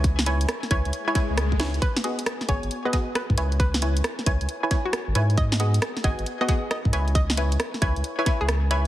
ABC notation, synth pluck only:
X:1
M:4/4
L:1/16
Q:"Swing 16ths" 1/4=135
K:C#dor
V:1 name="Synth pluck"
z16 | B z4 z c z2 B z2 B2 z2 | B2 z8 z F z4 | d z4 z d z2 d z2 d2 z2 |
d2 z8 z G z4 |]